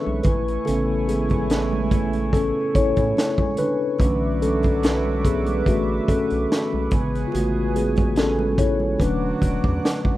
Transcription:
Already playing: tine electric piano D3 E3 A3 B3 C#4 D4 G#4 A4 B4, analog synth pad B4 E5 C#6
0.06 analog synth bass B1, high conga
0.23 analog synth bass A1, horn section E3 A3 C#4 E4, analog synth pad A3 G#5, tine electric piano E4 B4, kick, closed hi-hat, muted conga, low conga
0.48 closed hi-hat
0.65 analog synth bass A1, tine electric piano C#3 A3 B3 C#4 A4, closed hi-hat, low conga
1.08 tine electric piano B3 G#4, closed hi-hat, muted conga, high conga
1.29 kick, closed hi-hat, high conga
1.50 snare, closed hi-hat, muted conga
1.73 high conga
1.91 kick, closed hi-hat, muted conga
2.13 closed hi-hat, high conga
2.33 tine electric piano C#4 A4, kick, closed hi-hat, muted conga
2.75 analog synth bass A1, tine electric piano E4 C#5, kick, closed hi-hat, muted conga
2.97 analog synth bass A2, kick, closed hi-hat
3.17 snare, closed hi-hat, muted conga
3.38 kick, high conga
3.57 tine electric piano D4 B4, closed hi-hat, low conga
3.99 analog synth bass B1, tine electric piano D3 E3 A3 C#4, horn section F#3 D4 F#4, analog synth pad B4 E5 D6, kick, closed hi-hat, low conga
4.42 tine electric piano C#4 A4, closed hi-hat, muted conga, high conga
4.63 kick, closed hi-hat, high conga
4.83 snare, closed hi-hat
5.05 high conga
5.25 tine electric piano B3 G#4, kick, closed hi-hat, muted conga
5.46 closed hi-hat, high conga
5.66 analog synth bass A1, tine electric piano A3 F#4, kick, closed hi-hat
6.08 tine electric piano C#4 A4, kick, closed hi-hat, muted conga
6.30 analog synth bass B1, closed hi-hat
6.52 snare, closed hi-hat
6.73 analog synth bass B1, high conga
6.91 analog synth bass A1, tine electric piano C#3 G#3 B3, horn section G#3 C#4 E4 G#4, analog synth pad G#5, kick, closed hi-hat, muted conga, low conga
7.15 closed hi-hat
7.27 tine electric piano F4
7.32 analog synth bass A1, tine electric piano A3 F#4, closed hi-hat, muted conga, low conga
7.76 tine electric piano B3 G#4, closed hi-hat, muted conga, high conga
7.96 kick, closed hi-hat, high conga
8.16 tine electric piano C#4 A4, snare, closed hi-hat
8.39 high conga
8.58 tine electric piano E4 C#5, kick, closed hi-hat
8.80 high conga
8.99 analog synth bass E1, tine electric piano D3 F#3 A3 C#4 D4 B4, horn section F#3 D4 F#4, analog synth pad F#5 D6, kick, closed hi-hat, muted conga
9.42 analog synth bass E1, kick, closed hi-hat, muted conga
9.64 analog synth bass E2, kick
9.85 snare, closed hi-hat
10.05 analog synth bass A1, kick, high conga

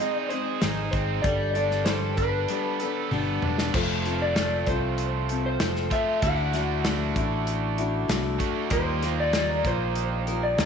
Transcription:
Already playing: overdriven electric guitar G#2 G#3 C4, electric slide guitar D#5
0.00 steel-string acoustic guitar G#3 C4 D#4 G#4
0.14 electric slide guitar D5
0.29 steel-string acoustic guitar C4 D#4 G#4, electric slide guitar C5, closed hi-hat
0.33 steel-string acoustic guitar G#3
0.61 fingered electric bass G#1, steel-string acoustic guitar G#2 D#3 G#3 C4 D#4 G#4, snare, closed hi-hat
0.91 fingered electric bass G#1, overdriven electric guitar C4, electric slide guitar C5, kick, closed hi-hat
1.22 fingered electric bass G1, steel-string acoustic guitar G3 B3 D4 A4, electric slide guitar D5, kick, closed hi-hat
1.54 steel-string acoustic guitar B3 D4 A4, electric slide guitar D5, closed hi-hat
1.71 snare
1.85 steel-string acoustic guitar G3 D4 A4, electric slide guitar C5, snare, closed hi-hat
2.17 steel-string acoustic guitar B3 D4, electric slide guitar B4, kick, closed hi-hat
2.48 steel-string acoustic guitar G3 B3 D4 A4, closed hi-hat
2.80 steel-string acoustic guitar B3 A4, closed hi-hat
2.84 steel-string acoustic guitar D4
3.11 fingered electric bass G1, steel-string acoustic guitar G3 B3 D4 A4, high tom
3.42 fingered electric bass E1, overdriven electric guitar D4, mid tom
3.58 snare
3.74 fingered electric bass F1, steel-string acoustic guitar F3 A3 C4 F4 A4, electric slide guitar C5, kick, crash
4.05 steel-string acoustic guitar C4 F4 A4, closed hi-hat
4.22 electric slide guitar D5
4.36 steel-string acoustic guitar A3 C4 F4 A4, snare, closed hi-hat
4.67 fingered electric bass C2, steel-string acoustic guitar F4 A4, electric slide guitar C5, kick, closed hi-hat
4.71 steel-string acoustic guitar C4
4.98 closed hi-hat
5.29 steel-string acoustic guitar C4 F4 A4, closed hi-hat
5.46 electric slide guitar C5
5.60 fingered electric bass F1, steel-string acoustic guitar A3 C4 F4 A4, snare, closed hi-hat
5.76 snare
5.90 overdriven electric guitar F3 A3 C4 F4, electric slide guitar E5, kick, closed hi-hat
6.22 fingered electric bass D2, steel-string acoustic guitar D3 A3 D4 E4 F#4, electric slide guitar F#5, kick, closed hi-hat
6.53 steel-string acoustic guitar D4 E4 F#4, snare, closed hi-hat
6.84 steel-string acoustic guitar A3 D4 E4 F#4, snare, closed hi-hat
7.16 fingered electric bass A1, steel-string acoustic guitar D4 E4 F#4, kick, closed hi-hat
7.47 closed hi-hat
7.78 steel-string acoustic guitar D4 E4 F#4, closed hi-hat
8.08 fingered electric bass C2, steel-string acoustic guitar A3 D4 E4 F#4, snare, closed hi-hat
8.39 overdriven electric guitar D3 A3 D4 F#4, kick, closed hi-hat
8.70 fingered electric bass D#2, steel-string acoustic guitar D#3 G3 A#3 F4 A#4, overdriven electric guitar D#4 G4, electric slide guitar C5, kick, closed hi-hat
9.03 steel-string acoustic guitar G3 F4 A#4, snare, closed hi-hat
9.20 electric slide guitar D5
9.33 steel-string acoustic guitar G3 A#3 F4 A#4, snare, closed hi-hat
9.64 fingered electric bass A#1, steel-string acoustic guitar G3 F4 A#4, electric slide guitar C5, kick, closed hi-hat
9.96 closed hi-hat
10.27 steel-string acoustic guitar G3 F4 A#4, closed hi-hat
10.43 electric slide guitar D5
10.58 fingered electric bass D#2, steel-string acoustic guitar G3 A#3 F4, electric slide guitar D#5, snare, closed hi-hat

